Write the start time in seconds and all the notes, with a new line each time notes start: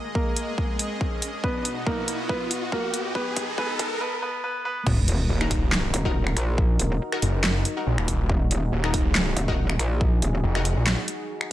Already playing: G#3 G#4 D#5, riser
0.15 A#3 A#4, kick
0.36 closed hi-hat
0.58 kick
0.79 closed hi-hat
1.01 kick
1.22 closed hi-hat
1.44 B2 B3 F#4 B4, kick
1.65 closed hi-hat
1.87 A#3 A#4, kick
2.08 closed hi-hat
2.29 B3 B4, kick
2.51 closed hi-hat
2.72 A#3 A#4, kick
2.94 closed hi-hat
3.15 G#3 B3 D#4 B4, kick
3.37 kick, closed hi-hat
3.58 B3 B4, kick
3.79 kick, closed hi-hat
4.01 B3 B4
4.22 B3 B4
4.44 B3 B4
4.65 B3 B4
4.86 D#1 D#4 F#4 A#4, kick, crash, sub drop
5.08 closed hi-hat
5.29 D#1
5.41 D#4 F#4 A#4, finger snap
5.51 kick, open hi-hat
5.72 snare, clap
5.94 D#1, closed hi-hat
6.05 D#4 F#4 A#4, kick
6.27 finger snap
6.37 A#1, finger snap, closed hi-hat
6.58 kick
6.79 D#1, closed hi-hat
7.12 D#4 F#4 A#4, finger snap
7.22 F#1, open hi-hat
7.44 snare, clap
7.65 closed hi-hat
7.77 D#4 F#4 A#4
7.87 A#1
7.98 D#1, finger snap
8.08 kick, closed hi-hat
8.29 D#1 G#4, kick
8.51 closed hi-hat
8.72 D#1
8.84 D#4 F#4 A#4, finger snap
8.94 kick, open hi-hat
9.15 snare, clap
9.37 D#1, closed hi-hat
9.48 D#4 F#4 A#4, kick
9.70 finger snap
9.79 A#1, finger snap, closed hi-hat
10.01 kick
10.22 D#1, closed hi-hat
10.44 F1
10.55 D#4 F#4 A#4, finger snap
10.65 open hi-hat
10.77 A#1
10.87 snare, clap
11.08 closed hi-hat
11.41 finger snap